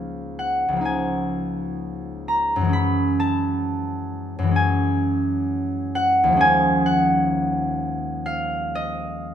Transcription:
Already playing: C#2 F3 A#3 D#4 F5
0.39 F#5
0.68 C#2
0.73 F3 A#3
0.81 D#4
0.85 G#5
2.28 A#5
2.56 F#2
2.61 E3 G#3
2.69 C#4
2.73 B5
3.20 A5
4.39 F#2 E3
4.47 G#3
4.51 C#4
4.56 G#5
5.95 F#5
6.24 D#2
6.28 F3
6.33 G#3
6.37 C#4 G#5
6.86 F#5
8.26 F5
8.75 D#5

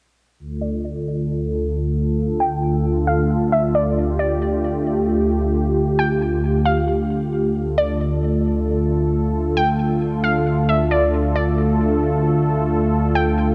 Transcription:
0.39 D2 D3 A3 F4 A4
0.61 D5
2.40 G5
3.07 F5
3.52 E5
3.75 D5
3.97 G4
4.19 D5
5.99 G5
6.66 F5
7.56 D2 D3 A3 F4 A4
7.78 D5
9.57 G5
10.24 F5
10.69 E5
10.91 D5
11.36 D5
13.15 G5

